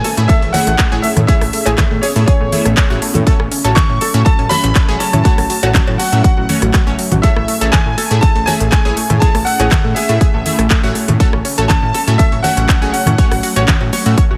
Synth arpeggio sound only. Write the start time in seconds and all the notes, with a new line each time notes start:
0.04 A4
0.17 A3
0.29 A4
0.42 A3
0.67 A3
0.79 A3
0.92 G#4
1.04 A3
1.17 A3
1.28 G#4
1.42 A3
1.53 A3
1.66 G#4
1.78 A3
1.91 A3
2.03 G#4
2.16 A3
2.28 G#4
2.41 A3
2.65 A3
2.77 A3
2.90 F#4
3.02 A3
3.15 A3
3.27 A4
3.40 C#4
3.52 C#4
3.64 A4
3.76 C#4
3.89 C#4
4.01 A4
4.14 C#4
4.26 A4
4.39 C#4
4.64 C#4
4.76 C#4
4.88 G#4
5.00 C#4
5.13 C#4
5.25 F#4
5.38 F#3
5.50 F#3
5.63 F#4
5.75 F#3
5.88 F#3
6.00 F#4
6.13 F#3
6.24 F#4
6.37 F#3
6.62 F#3
6.74 F#3
6.87 C#4
6.99 F#3
7.12 F#3
7.23 A4
7.36 A3
7.48 A3
7.61 A4
7.73 A3
7.86 A3
7.98 A4
8.11 A3
8.23 A4
8.36 A3
8.60 A3
8.72 A3
8.85 G#4
8.97 A3
9.10 A3
9.22 G#4
9.35 A3
9.46 A3
9.60 G#4
9.71 A3
9.84 A3
9.96 G#4
10.09 A3
10.21 G#4
10.34 A3
10.59 A3
10.71 A3
10.83 F#4
10.95 A3
11.08 A3
11.20 A4
11.33 C#4
11.45 C#4
11.58 A4
11.70 C#4
11.83 C#4
11.94 A4
12.08 C#4
12.19 A4
12.32 C#4
12.57 C#4
12.69 C#4
12.82 G#4
12.94 C#4
13.07 C#4
13.19 C#5
13.32 F#4
13.43 F#4
13.56 C#5
13.68 F#4
13.81 F#4
13.93 C#5
14.06 F#4
14.18 C#5
14.31 F#4